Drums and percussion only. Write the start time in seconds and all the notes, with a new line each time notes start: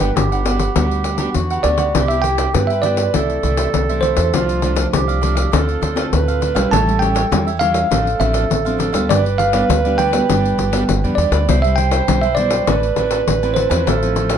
0.00 pandeiro
0.17 pandeiro
0.32 pandeiro
0.46 pandeiro
0.59 pandeiro
0.76 pandeiro
0.91 pandeiro
1.04 pandeiro
1.18 pandeiro
1.34 pandeiro
1.50 pandeiro
1.64 pandeiro
1.78 pandeiro
1.95 pandeiro
2.10 pandeiro
2.24 pandeiro
2.38 pandeiro
2.54 pandeiro
2.70 pandeiro
2.83 pandeiro
2.97 pandeiro
3.14 pandeiro
3.30 pandeiro
3.43 pandeiro
3.57 pandeiro
3.74 pandeiro
3.89 pandeiro
4.03 pandeiro
4.17 pandeiro
4.34 pandeiro
4.49 pandeiro
4.62 pandeiro
4.76 pandeiro
4.93 pandeiro
5.09 pandeiro
5.23 pandeiro
5.37 pandeiro
5.53 pandeiro
5.69 pandeiro
5.83 pandeiro
5.97 pandeiro
6.13 pandeiro
6.28 pandeiro
6.42 pandeiro
6.56 pandeiro
6.73 pandeiro
6.89 pandeiro
7.02 pandeiro
7.16 pandeiro
7.32 pandeiro
7.48 pandeiro
7.61 pandeiro
7.74 pandeiro
7.91 pandeiro
8.07 pandeiro
8.21 pandeiro
8.34 pandeiro
8.51 pandeiro
8.66 pandeiro
8.80 pandeiro
8.94 pandeiro
9.10 pandeiro
9.26 pandeiro
9.39 pandeiro
9.53 pandeiro
9.70 pandeiro
9.85 pandeiro
9.99 pandeiro
10.13 pandeiro
10.29 pandeiro
10.45 pandeiro
10.59 pandeiro
10.73 pandeiro
10.89 pandeiro
11.04 pandeiro
11.18 pandeiro
11.32 pandeiro
11.49 pandeiro
11.64 pandeiro
11.78 pandeiro
11.91 pandeiro
12.08 pandeiro
12.23 pandeiro
12.37 pandeiro
12.51 pandeiro
12.67 pandeiro
12.83 pandeiro
12.96 pandeiro
13.11 pandeiro
13.28 pandeiro
13.43 pandeiro
13.56 pandeiro
13.71 pandeiro
13.87 pandeiro
14.03 pandeiro
14.16 pandeiro
14.30 pandeiro